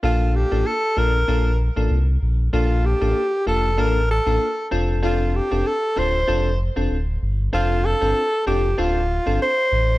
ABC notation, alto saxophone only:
X:1
M:4/4
L:1/8
Q:"Swing 16ths" 1/4=96
K:Bblyd
V:1 name="Alto saxophone"
F G A B2 z3 | F G2 A B A2 z | F G A c2 z3 | F A2 G F2 c2 |]